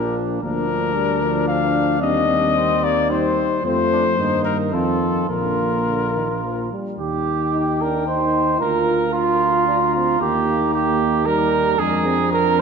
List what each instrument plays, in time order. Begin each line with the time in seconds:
Already playing: tuba A#1, trombone F3, french horn A#3, trumpet D4, cornet A#4
0.42 tuba D2, trombone F3, french horn A#3, trumpet D4, cornet A#4
0.68 french horn D4
0.95 trombone G3
1.21 trombone F3
1.48 cornet F5
2.01 tuba D#2, trombone G3, french horn C4, cornet D#5
2.28 french horn C4
2.57 trumpet C4
2.84 trumpet A#3, cornet D5
3.09 trombone G3, trumpet C4, french horn D#4, cornet C5
3.63 tuba F2, trombone F3, french horn A3, trumpet C4, cornet C5
3.92 trumpet D4
4.18 tuba G2, trombone D#3, french horn A#3, trumpet D#4
4.45 cornet A#4
4.72 tuba F2, trombone D#3, french horn C4, trumpet F4, cornet A4
5.29 tuba A#1, trombone D3, french horn A#3, trumpet F4, cornet A#4
5.87 trombone D3
6.15 trombone D#3
6.43 trombone F3
6.72 trombone G3
6.97 tuba D#2, french horn D#4, trumpet G4, cornet G5
7.53 trombone D#4
7.80 trombone D4, trumpet A#4
8.06 trombone D#4, trumpet C5
8.60 tuba D2, trombone F4, french horn F4, trumpet A#4, cornet A#5
9.13 trumpet F4
9.67 trombone D4
9.94 trombone C4, trumpet F4
10.20 tuba D#2, trombone A#3, french horn D#4, trumpet G4
10.74 trumpet G4
11.26 trombone G3, trumpet A#4
11.78 tuba F2, trombone G#3, french horn D4, trumpet G#4, cornet A#5
12.06 trombone C4
12.32 trumpet A#4